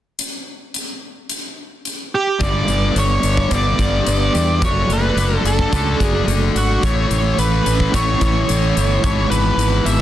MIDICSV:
0, 0, Header, 1, 6, 480
1, 0, Start_track
1, 0, Tempo, 552995
1, 161, Time_signature, 4, 2, 24, 8
1, 8695, End_track
2, 0, Start_track
2, 0, Title_t, "Lead electric guitar"
2, 0, Program_c, 0, 29
2, 1866, Note_on_c, 0, 67, 81
2, 2101, Note_on_c, 0, 74, 80
2, 2104, Note_off_c, 0, 67, 0
2, 2587, Note_off_c, 0, 74, 0
2, 2591, Note_on_c, 0, 73, 81
2, 3028, Note_off_c, 0, 73, 0
2, 3082, Note_on_c, 0, 74, 99
2, 4029, Note_off_c, 0, 74, 0
2, 4033, Note_on_c, 0, 73, 77
2, 4269, Note_off_c, 0, 73, 0
2, 4280, Note_on_c, 0, 71, 87
2, 4739, Note_off_c, 0, 71, 0
2, 4743, Note_on_c, 0, 69, 70
2, 5211, Note_off_c, 0, 69, 0
2, 5211, Note_on_c, 0, 68, 70
2, 5421, Note_off_c, 0, 68, 0
2, 5709, Note_on_c, 0, 66, 76
2, 5923, Note_off_c, 0, 66, 0
2, 5940, Note_on_c, 0, 73, 80
2, 6415, Note_off_c, 0, 73, 0
2, 6418, Note_on_c, 0, 71, 74
2, 6896, Note_off_c, 0, 71, 0
2, 6900, Note_on_c, 0, 73, 97
2, 7815, Note_off_c, 0, 73, 0
2, 7846, Note_on_c, 0, 73, 86
2, 8067, Note_off_c, 0, 73, 0
2, 8079, Note_on_c, 0, 71, 89
2, 8553, Note_on_c, 0, 76, 88
2, 8572, Note_off_c, 0, 71, 0
2, 8695, Note_off_c, 0, 76, 0
2, 8695, End_track
3, 0, Start_track
3, 0, Title_t, "Clean electric guitar"
3, 0, Program_c, 1, 27
3, 2088, Note_on_c, 1, 55, 59
3, 2330, Note_on_c, 1, 59, 51
3, 2553, Note_off_c, 1, 55, 0
3, 2563, Note_on_c, 1, 55, 52
3, 2807, Note_on_c, 1, 62, 54
3, 3034, Note_off_c, 1, 59, 0
3, 3045, Note_on_c, 1, 59, 60
3, 3280, Note_off_c, 1, 55, 0
3, 3290, Note_on_c, 1, 55, 61
3, 3512, Note_off_c, 1, 59, 0
3, 3523, Note_on_c, 1, 59, 62
3, 3760, Note_on_c, 1, 67, 67
3, 4002, Note_off_c, 1, 55, 0
3, 4005, Note_off_c, 1, 67, 0
3, 4005, Note_on_c, 1, 54, 63
3, 4007, Note_off_c, 1, 59, 0
3, 4010, Note_off_c, 1, 62, 0
3, 4247, Note_on_c, 1, 57, 58
3, 4471, Note_off_c, 1, 54, 0
3, 4481, Note_on_c, 1, 54, 51
3, 4733, Note_on_c, 1, 62, 56
3, 4958, Note_off_c, 1, 57, 0
3, 4969, Note_on_c, 1, 57, 58
3, 5193, Note_off_c, 1, 54, 0
3, 5204, Note_on_c, 1, 54, 61
3, 5432, Note_off_c, 1, 57, 0
3, 5442, Note_on_c, 1, 57, 64
3, 5685, Note_on_c, 1, 66, 66
3, 5925, Note_off_c, 1, 57, 0
3, 5926, Note_off_c, 1, 54, 0
3, 5927, Note_off_c, 1, 66, 0
3, 5928, Note_on_c, 1, 45, 59
3, 5930, Note_off_c, 1, 62, 0
3, 6173, Note_on_c, 1, 52, 53
3, 6394, Note_off_c, 1, 52, 0
3, 6405, Note_on_c, 1, 52, 53
3, 6652, Note_on_c, 1, 61, 59
3, 6889, Note_on_c, 1, 57, 61
3, 7118, Note_off_c, 1, 52, 0
3, 7125, Note_off_c, 1, 45, 0
3, 7128, Note_on_c, 1, 52, 62
3, 7358, Note_off_c, 1, 57, 0
3, 7368, Note_on_c, 1, 57, 57
3, 7612, Note_on_c, 1, 64, 72
3, 7844, Note_off_c, 1, 52, 0
3, 7844, Note_off_c, 1, 57, 0
3, 7845, Note_off_c, 1, 61, 0
3, 7847, Note_off_c, 1, 64, 0
3, 7852, Note_on_c, 1, 44, 60
3, 8079, Note_on_c, 1, 52, 58
3, 8312, Note_off_c, 1, 52, 0
3, 8322, Note_on_c, 1, 52, 58
3, 8563, Note_on_c, 1, 59, 55
3, 8695, Note_off_c, 1, 44, 0
3, 8695, Note_off_c, 1, 52, 0
3, 8695, Note_off_c, 1, 59, 0
3, 8695, End_track
4, 0, Start_track
4, 0, Title_t, "Distorted electric guitar"
4, 0, Program_c, 2, 30
4, 2079, Note_on_c, 2, 43, 68
4, 2094, Note_on_c, 2, 50, 86
4, 2102, Note_on_c, 2, 55, 80
4, 3031, Note_off_c, 2, 43, 0
4, 3039, Note_off_c, 2, 50, 0
4, 3043, Note_off_c, 2, 55, 0
4, 3045, Note_on_c, 2, 43, 58
4, 3058, Note_on_c, 2, 50, 60
4, 3068, Note_on_c, 2, 55, 69
4, 3987, Note_off_c, 2, 50, 0
4, 3994, Note_off_c, 2, 43, 0
4, 3997, Note_on_c, 2, 50, 72
4, 4005, Note_off_c, 2, 55, 0
4, 4015, Note_on_c, 2, 57, 82
4, 4026, Note_on_c, 2, 62, 80
4, 4945, Note_off_c, 2, 50, 0
4, 4955, Note_on_c, 2, 50, 66
4, 4964, Note_off_c, 2, 62, 0
4, 4969, Note_off_c, 2, 57, 0
4, 4973, Note_on_c, 2, 57, 56
4, 4977, Note_on_c, 2, 62, 62
4, 5907, Note_off_c, 2, 50, 0
4, 5916, Note_off_c, 2, 57, 0
4, 5918, Note_off_c, 2, 62, 0
4, 5926, Note_on_c, 2, 45, 73
4, 5936, Note_on_c, 2, 52, 75
4, 5945, Note_on_c, 2, 57, 84
4, 6864, Note_off_c, 2, 45, 0
4, 6875, Note_on_c, 2, 45, 72
4, 6880, Note_off_c, 2, 57, 0
4, 6884, Note_off_c, 2, 52, 0
4, 6888, Note_on_c, 2, 52, 64
4, 6896, Note_on_c, 2, 57, 76
4, 7823, Note_off_c, 2, 45, 0
4, 7829, Note_off_c, 2, 52, 0
4, 7830, Note_on_c, 2, 40, 72
4, 7833, Note_off_c, 2, 57, 0
4, 7840, Note_on_c, 2, 47, 81
4, 7847, Note_on_c, 2, 52, 83
4, 8695, Note_off_c, 2, 40, 0
4, 8695, Note_off_c, 2, 47, 0
4, 8695, Note_off_c, 2, 52, 0
4, 8695, End_track
5, 0, Start_track
5, 0, Title_t, "Fingered electric bass"
5, 0, Program_c, 3, 33
5, 2088, Note_on_c, 3, 31, 75
5, 2272, Note_off_c, 3, 31, 0
5, 2326, Note_on_c, 3, 31, 68
5, 2511, Note_off_c, 3, 31, 0
5, 2565, Note_on_c, 3, 31, 77
5, 2751, Note_off_c, 3, 31, 0
5, 2806, Note_on_c, 3, 31, 69
5, 2991, Note_off_c, 3, 31, 0
5, 3050, Note_on_c, 3, 31, 76
5, 3234, Note_off_c, 3, 31, 0
5, 3285, Note_on_c, 3, 31, 67
5, 3471, Note_off_c, 3, 31, 0
5, 3532, Note_on_c, 3, 31, 62
5, 3715, Note_off_c, 3, 31, 0
5, 3775, Note_on_c, 3, 40, 67
5, 4008, Note_on_c, 3, 30, 69
5, 4021, Note_off_c, 3, 40, 0
5, 4193, Note_off_c, 3, 30, 0
5, 4244, Note_on_c, 3, 30, 70
5, 4430, Note_off_c, 3, 30, 0
5, 4481, Note_on_c, 3, 30, 78
5, 4668, Note_off_c, 3, 30, 0
5, 4721, Note_on_c, 3, 30, 74
5, 4908, Note_off_c, 3, 30, 0
5, 4969, Note_on_c, 3, 37, 79
5, 5153, Note_off_c, 3, 37, 0
5, 5208, Note_on_c, 3, 30, 70
5, 5392, Note_off_c, 3, 30, 0
5, 5445, Note_on_c, 3, 30, 78
5, 5630, Note_off_c, 3, 30, 0
5, 5688, Note_on_c, 3, 32, 72
5, 5872, Note_off_c, 3, 32, 0
5, 5929, Note_on_c, 3, 33, 76
5, 6112, Note_off_c, 3, 33, 0
5, 6169, Note_on_c, 3, 33, 80
5, 6352, Note_off_c, 3, 33, 0
5, 6406, Note_on_c, 3, 33, 84
5, 6590, Note_off_c, 3, 33, 0
5, 6649, Note_on_c, 3, 33, 68
5, 6831, Note_off_c, 3, 33, 0
5, 6891, Note_on_c, 3, 33, 77
5, 7073, Note_off_c, 3, 33, 0
5, 7126, Note_on_c, 3, 33, 69
5, 7309, Note_off_c, 3, 33, 0
5, 7375, Note_on_c, 3, 33, 71
5, 7554, Note_off_c, 3, 33, 0
5, 7611, Note_on_c, 3, 31, 82
5, 7791, Note_off_c, 3, 31, 0
5, 7846, Note_on_c, 3, 32, 79
5, 8027, Note_off_c, 3, 32, 0
5, 8076, Note_on_c, 3, 32, 81
5, 8261, Note_off_c, 3, 32, 0
5, 8307, Note_on_c, 3, 32, 78
5, 8495, Note_off_c, 3, 32, 0
5, 8554, Note_on_c, 3, 32, 66
5, 8695, Note_off_c, 3, 32, 0
5, 8695, End_track
6, 0, Start_track
6, 0, Title_t, "Drums"
6, 163, Note_on_c, 9, 42, 54
6, 250, Note_off_c, 9, 42, 0
6, 645, Note_on_c, 9, 42, 47
6, 732, Note_off_c, 9, 42, 0
6, 1124, Note_on_c, 9, 42, 51
6, 1211, Note_off_c, 9, 42, 0
6, 1608, Note_on_c, 9, 42, 43
6, 1695, Note_off_c, 9, 42, 0
6, 2089, Note_on_c, 9, 42, 79
6, 2090, Note_on_c, 9, 36, 97
6, 2175, Note_off_c, 9, 42, 0
6, 2176, Note_off_c, 9, 36, 0
6, 2327, Note_on_c, 9, 42, 56
6, 2414, Note_off_c, 9, 42, 0
6, 2571, Note_on_c, 9, 42, 73
6, 2658, Note_off_c, 9, 42, 0
6, 2805, Note_on_c, 9, 42, 58
6, 2892, Note_off_c, 9, 42, 0
6, 2928, Note_on_c, 9, 36, 69
6, 3015, Note_off_c, 9, 36, 0
6, 3046, Note_on_c, 9, 42, 78
6, 3049, Note_on_c, 9, 36, 78
6, 3133, Note_off_c, 9, 42, 0
6, 3136, Note_off_c, 9, 36, 0
6, 3289, Note_on_c, 9, 36, 63
6, 3289, Note_on_c, 9, 42, 55
6, 3375, Note_off_c, 9, 36, 0
6, 3376, Note_off_c, 9, 42, 0
6, 3529, Note_on_c, 9, 42, 77
6, 3616, Note_off_c, 9, 42, 0
6, 3774, Note_on_c, 9, 42, 53
6, 3861, Note_off_c, 9, 42, 0
6, 4010, Note_on_c, 9, 36, 97
6, 4012, Note_on_c, 9, 42, 73
6, 4097, Note_off_c, 9, 36, 0
6, 4099, Note_off_c, 9, 42, 0
6, 4253, Note_on_c, 9, 42, 54
6, 4340, Note_off_c, 9, 42, 0
6, 4492, Note_on_c, 9, 42, 71
6, 4579, Note_off_c, 9, 42, 0
6, 4734, Note_on_c, 9, 42, 57
6, 4821, Note_off_c, 9, 42, 0
6, 4851, Note_on_c, 9, 36, 69
6, 4937, Note_off_c, 9, 36, 0
6, 4970, Note_on_c, 9, 36, 89
6, 4974, Note_on_c, 9, 42, 67
6, 5057, Note_off_c, 9, 36, 0
6, 5060, Note_off_c, 9, 42, 0
6, 5211, Note_on_c, 9, 36, 66
6, 5213, Note_on_c, 9, 42, 52
6, 5298, Note_off_c, 9, 36, 0
6, 5299, Note_off_c, 9, 42, 0
6, 5452, Note_on_c, 9, 42, 61
6, 5539, Note_off_c, 9, 42, 0
6, 5694, Note_on_c, 9, 42, 54
6, 5781, Note_off_c, 9, 42, 0
6, 5931, Note_on_c, 9, 36, 95
6, 5932, Note_on_c, 9, 42, 78
6, 6018, Note_off_c, 9, 36, 0
6, 6018, Note_off_c, 9, 42, 0
6, 6169, Note_on_c, 9, 42, 56
6, 6256, Note_off_c, 9, 42, 0
6, 6411, Note_on_c, 9, 42, 72
6, 6498, Note_off_c, 9, 42, 0
6, 6651, Note_on_c, 9, 42, 59
6, 6737, Note_off_c, 9, 42, 0
6, 6771, Note_on_c, 9, 36, 70
6, 6857, Note_off_c, 9, 36, 0
6, 6891, Note_on_c, 9, 36, 82
6, 6892, Note_on_c, 9, 42, 82
6, 6978, Note_off_c, 9, 36, 0
6, 6978, Note_off_c, 9, 42, 0
6, 7127, Note_on_c, 9, 42, 52
6, 7129, Note_on_c, 9, 36, 65
6, 7214, Note_off_c, 9, 42, 0
6, 7216, Note_off_c, 9, 36, 0
6, 7369, Note_on_c, 9, 42, 73
6, 7456, Note_off_c, 9, 42, 0
6, 7612, Note_on_c, 9, 42, 57
6, 7698, Note_off_c, 9, 42, 0
6, 7844, Note_on_c, 9, 42, 80
6, 7846, Note_on_c, 9, 36, 99
6, 7931, Note_off_c, 9, 42, 0
6, 7932, Note_off_c, 9, 36, 0
6, 8086, Note_on_c, 9, 42, 61
6, 8173, Note_off_c, 9, 42, 0
6, 8324, Note_on_c, 9, 42, 68
6, 8411, Note_off_c, 9, 42, 0
6, 8561, Note_on_c, 9, 42, 64
6, 8648, Note_off_c, 9, 42, 0
6, 8695, End_track
0, 0, End_of_file